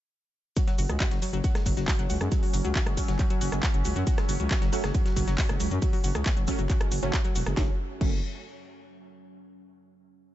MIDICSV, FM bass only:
0, 0, Header, 1, 2, 480
1, 0, Start_track
1, 0, Key_signature, 3, "minor"
1, 0, Tempo, 437956
1, 620, Time_signature, 4, 2, 24, 8
1, 11343, End_track
2, 0, Start_track
2, 0, Title_t, "FM bass"
2, 0, Program_c, 0, 39
2, 859, Note_on_c, 0, 30, 102
2, 951, Note_off_c, 0, 30, 0
2, 982, Note_on_c, 0, 37, 97
2, 1071, Note_off_c, 0, 37, 0
2, 1221, Note_on_c, 0, 30, 96
2, 1310, Note_off_c, 0, 30, 0
2, 1461, Note_on_c, 0, 30, 87
2, 1550, Note_off_c, 0, 30, 0
2, 1820, Note_on_c, 0, 30, 88
2, 1911, Note_off_c, 0, 30, 0
2, 1941, Note_on_c, 0, 30, 87
2, 2030, Note_off_c, 0, 30, 0
2, 2179, Note_on_c, 0, 30, 102
2, 2269, Note_off_c, 0, 30, 0
2, 2298, Note_on_c, 0, 37, 85
2, 2390, Note_off_c, 0, 37, 0
2, 2420, Note_on_c, 0, 42, 95
2, 2510, Note_off_c, 0, 42, 0
2, 2778, Note_on_c, 0, 30, 100
2, 2870, Note_off_c, 0, 30, 0
2, 2900, Note_on_c, 0, 37, 95
2, 2990, Note_off_c, 0, 37, 0
2, 3140, Note_on_c, 0, 30, 100
2, 3230, Note_off_c, 0, 30, 0
2, 3380, Note_on_c, 0, 30, 87
2, 3470, Note_off_c, 0, 30, 0
2, 3738, Note_on_c, 0, 30, 85
2, 3830, Note_off_c, 0, 30, 0
2, 3859, Note_on_c, 0, 30, 86
2, 3950, Note_off_c, 0, 30, 0
2, 4101, Note_on_c, 0, 30, 107
2, 4191, Note_off_c, 0, 30, 0
2, 4219, Note_on_c, 0, 37, 84
2, 4310, Note_off_c, 0, 37, 0
2, 4340, Note_on_c, 0, 42, 98
2, 4430, Note_off_c, 0, 42, 0
2, 4700, Note_on_c, 0, 30, 103
2, 4791, Note_off_c, 0, 30, 0
2, 4821, Note_on_c, 0, 37, 98
2, 4910, Note_off_c, 0, 37, 0
2, 5062, Note_on_c, 0, 30, 97
2, 5151, Note_off_c, 0, 30, 0
2, 5301, Note_on_c, 0, 30, 87
2, 5391, Note_off_c, 0, 30, 0
2, 5661, Note_on_c, 0, 30, 86
2, 5751, Note_off_c, 0, 30, 0
2, 5782, Note_on_c, 0, 30, 89
2, 5871, Note_off_c, 0, 30, 0
2, 6021, Note_on_c, 0, 30, 106
2, 6110, Note_off_c, 0, 30, 0
2, 6139, Note_on_c, 0, 37, 84
2, 6231, Note_off_c, 0, 37, 0
2, 6261, Note_on_c, 0, 42, 95
2, 6350, Note_off_c, 0, 42, 0
2, 6619, Note_on_c, 0, 30, 102
2, 6711, Note_off_c, 0, 30, 0
2, 6741, Note_on_c, 0, 37, 95
2, 6830, Note_off_c, 0, 37, 0
2, 6982, Note_on_c, 0, 30, 97
2, 7071, Note_off_c, 0, 30, 0
2, 7221, Note_on_c, 0, 30, 84
2, 7311, Note_off_c, 0, 30, 0
2, 7580, Note_on_c, 0, 30, 87
2, 7671, Note_off_c, 0, 30, 0
2, 7701, Note_on_c, 0, 30, 89
2, 7790, Note_off_c, 0, 30, 0
2, 8060, Note_on_c, 0, 28, 94
2, 8151, Note_off_c, 0, 28, 0
2, 8180, Note_on_c, 0, 30, 107
2, 8270, Note_off_c, 0, 30, 0
2, 8779, Note_on_c, 0, 30, 96
2, 9003, Note_off_c, 0, 30, 0
2, 11343, End_track
0, 0, End_of_file